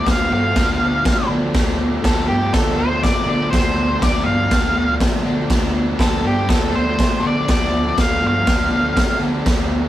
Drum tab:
HH |o-o-o-o-|o-o-o-o-|o-o-o-o-|o-o-o-o-|
SD |o-o-o-o-|o-o-o-o-|o-o-o-o-|o-o-o-o-|
BD |o-o-o-o-|o-o-o-o-|o-o-o-o-|o-o-o-o-|

HH |o-o-o-o-|
SD |o-o-o-o-|
BD |o-o-o-o-|